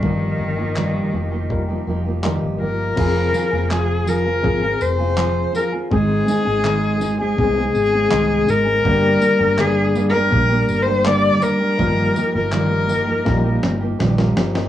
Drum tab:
CC |----------------|x---------------|----------------|----------------|
TB |----------------|--x---x---x---x-|--x---x---x---x-|--x---x---x---x-|
CP |----x-------x---|----x-------x---|----x-------x---|----x-------x---|
SD |----------------|----------------|----------------|----------------|
BD |o-------o-------|o-------o-------|o-------o-------|o-------o-------|

CC |----------------|
TB |--x---x---------|
CP |----x-----------|
SD |--------o-o-oooo|
BD |o-------o-------|